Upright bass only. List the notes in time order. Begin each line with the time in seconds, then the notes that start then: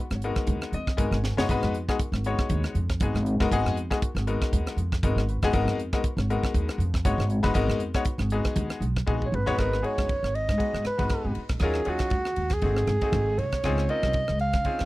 0.11 G#1
0.36 muted upright bass stroke
0.47 D#2
0.72 F2
0.98 G#1
1.11 G#1
1.37 F#1
1.49 G#1
1.63 F2
2.12 G#1
2.39 muted upright bass stroke
2.50 D#2
2.75 F2
3.01 G#1
3.15 G#1
3.41 F#1
3.51 G#1
3.65 F2
4.15 G#1
4.41 muted upright bass stroke
4.53 D#2
4.77 F2
5.03 G#1
5.16 G#1
5.43 F#1
5.54 G#1
5.65 F2
6.17 G#1
6.43 muted upright bass stroke
6.54 D#2
6.78 F2
7.05 G#1
7.18 G#1
7.44 F#1
7.55 G#1
7.68 F2
8.18 G#1
8.45 muted upright bass stroke
8.56 D#2
8.81 B1
9.07 A#1
9.32 G#1
9.59 G#1
9.98 F#1
10.23 G#1
10.49 G#2
10.74 G#2
10.84 muted upright bass stroke
10.99 G#1
11.25 G#1
11.36 muted upright bass stroke
11.49 A#1
11.61 D#2
11.86 D#2
12.11 D#2
12.37 D#2
12.62 G#1
12.87 G#1
13.12 G#1
13.38 C2
13.63 C#2
14.03 C2
14.29 C#2
14.54 C#3
14.80 C#3